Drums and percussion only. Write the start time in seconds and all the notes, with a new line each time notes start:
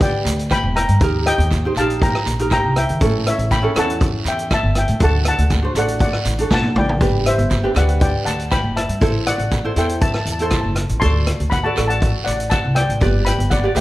0.01 kick, closed hi-hat
0.25 closed hi-hat, short guiro
0.39 closed hi-hat
0.50 kick, cross-stick, closed hi-hat, short guiro
0.76 cross-stick, closed hi-hat
0.89 closed hi-hat
1.00 kick, closed hi-hat, long guiro
1.26 cross-stick, closed hi-hat
1.40 closed hi-hat
1.51 kick, closed hi-hat, short guiro
1.75 closed hi-hat, short guiro
1.90 closed hi-hat
2.00 kick, closed hi-hat, long guiro
2.15 cross-stick
2.25 closed hi-hat, short guiro
2.39 closed hi-hat
2.50 kick, cross-stick, closed hi-hat, short guiro
2.76 cross-stick, closed hi-hat
2.89 closed hi-hat
3.01 kick, closed hi-hat, long guiro
3.27 cross-stick, closed hi-hat
3.39 closed hi-hat
3.51 kick, closed hi-hat, short guiro
3.76 cross-stick, closed hi-hat, short guiro
3.90 closed hi-hat
4.01 kick, closed hi-hat, long guiro
4.25 closed hi-hat, short guiro
4.39 closed hi-hat
4.51 kick, cross-stick, closed hi-hat, short guiro
4.75 cross-stick, closed hi-hat
4.88 closed hi-hat
5.00 kick, closed hi-hat, long guiro
5.25 cross-stick, closed hi-hat
5.38 closed hi-hat
5.50 kick, closed hi-hat, short guiro
5.75 closed hi-hat, short guiro
5.88 closed hi-hat
5.99 kick, closed hi-hat, long guiro
6.13 cross-stick
6.25 closed hi-hat, short guiro
6.38 closed hi-hat
6.51 kick, snare, short guiro
6.64 high tom
6.76 mid tom
6.89 floor tom
7.01 kick, closed hi-hat, long guiro
7.26 cross-stick, closed hi-hat
7.39 closed hi-hat
7.50 kick, closed hi-hat, short guiro
7.75 cross-stick, closed hi-hat, short guiro
7.89 closed hi-hat
8.00 kick, closed hi-hat, long guiro
8.26 closed hi-hat, short guiro
8.39 closed hi-hat
8.51 kick, cross-stick, closed hi-hat, short guiro
8.77 cross-stick, closed hi-hat
8.89 closed hi-hat
9.01 kick, closed hi-hat, long guiro
9.27 cross-stick, closed hi-hat
9.39 closed hi-hat
9.51 kick, closed hi-hat, short guiro
9.76 closed hi-hat, short guiro
9.89 closed hi-hat
10.01 kick, closed hi-hat, long guiro
10.14 cross-stick
10.26 closed hi-hat
10.39 closed hi-hat
10.50 kick, cross-stick, closed hi-hat, short guiro
10.76 cross-stick, closed hi-hat
10.89 closed hi-hat
11.01 kick, closed hi-hat, long guiro
11.27 cross-stick, closed hi-hat
11.40 closed hi-hat
11.51 kick, closed hi-hat, short guiro
11.76 cross-stick, closed hi-hat, short guiro
11.90 closed hi-hat
12.01 kick, closed hi-hat, long guiro
12.25 closed hi-hat, short guiro
12.40 closed hi-hat
12.50 kick, cross-stick, closed hi-hat, short guiro
12.76 cross-stick, closed hi-hat
12.90 closed hi-hat
13.01 kick, closed hi-hat, long guiro
13.26 cross-stick, closed hi-hat
13.40 closed hi-hat
13.51 kick, closed hi-hat, short guiro
13.75 closed hi-hat, short guiro